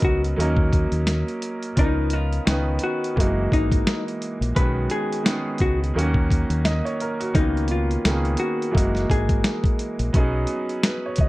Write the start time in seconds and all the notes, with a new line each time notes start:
Already playing: F#3 B3 C#4 D#4 G#4 A#4
0.00 C#2, kick, closed hi-hat
0.05 F#4
0.24 closed hi-hat
0.36 D#2 F#3 A#3 C#4 D#4, closed hi-hat
0.41 A#4
0.57 kick
0.73 kick, closed hi-hat
0.92 D#2, closed hi-hat
1.07 snare, closed hi-hat
1.28 closed hi-hat
1.42 closed hi-hat
1.63 closed hi-hat
1.75 C#2 F3 B3 C#4 D#4, kick, closed hi-hat
1.80 A#4
2.10 F4, closed hi-hat
2.33 closed hi-hat
2.45 C#2 D#3 B3 C#4 D#4, snare, closed hi-hat
2.50 B4
2.79 closed hi-hat
2.84 F#4
3.04 closed hi-hat
3.16 F#1 E3 G#3 A#3 D#4, kick
3.20 F#4, closed hi-hat
3.52 G#1 D#4, kick, closed hi-hat
3.72 kick, closed hi-hat
3.87 snare, closed hi-hat
4.08 closed hi-hat
4.22 closed hi-hat
4.41 A#1, closed hi-hat
4.55 B1 D#3 G#3 B3 C#4 B4, kick, closed hi-hat
4.60 F#4
4.90 G#4, closed hi-hat
5.13 closed hi-hat
5.23 D#3 G#3 B3 C#4, snare, closed hi-hat
5.28 G#4
5.58 C#2 F#4, kick, closed hi-hat
5.84 closed hi-hat
5.94 D#2 D#3 F#3 A#3 C#4
5.99 F#4, closed hi-hat
6.14 kick
6.31 kick, closed hi-hat
6.50 D#2, closed hi-hat
6.65 D#5, snare, closed hi-hat
6.85 C#5, closed hi-hat
7.00 A#4, closed hi-hat
7.20 F#4, closed hi-hat
7.34 C#2 D#3 A#3 B3 C#4 D#4, kick, closed hi-hat
7.39 F4
7.57 closed hi-hat
7.68 F4, closed hi-hat
7.91 closed hi-hat
8.05 C#2 D#3 A#3 B3 C#4, snare, closed hi-hat
8.09 G#4
8.25 closed hi-hat
8.37 F#4, closed hi-hat
8.62 closed hi-hat
8.71 F#1 E3 G#3 A#3 D#4, kick
8.76 F#4, closed hi-hat
8.95 snare, closed hi-hat
9.10 G#1 G#4, kick, closed hi-hat
9.29 kick, closed hi-hat
9.44 snare, closed hi-hat
9.64 kick, closed hi-hat
9.79 closed hi-hat
9.99 A#1, closed hi-hat
10.13 B1 F#3 B3 C#4 D#4, kick, closed hi-hat
10.17 G#4
10.47 closed hi-hat
10.69 closed hi-hat
10.83 B4, snare, closed hi-hat
11.06 C#5
11.16 C#2, kick, closed hi-hat
11.20 D#5